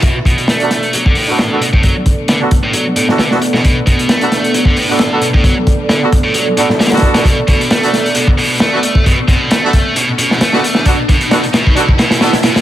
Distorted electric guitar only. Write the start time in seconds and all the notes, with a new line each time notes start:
0.04 B2
0.26 B2
0.49 A3
0.94 F#3
1.06 D3
1.16 A2
1.61 B2
1.73 A2
1.84 F#3
2.29 D3
2.64 A2
2.74 F#3
2.97 A2
3.19 D3
3.54 B2
3.64 B2
3.86 B2
4.09 A3
4.54 F#3
4.66 D3
4.77 A2
5.22 B2
5.34 A2
5.44 F#3
5.89 D3
6.24 A2
6.35 F#3
6.58 A2
6.80 D3
7.15 B2
7.25 B2
7.48 B2
7.70 A3
8.15 B2
8.38 B2
8.60 A3
9.06 B2
9.28 B2
9.51 A3
9.96 B2
10.19 B2
10.41 A3
10.86 B2
11.09 B2
11.31 B2
11.53 B2
11.76 B2
11.98 B2
12.21 B2
12.44 B2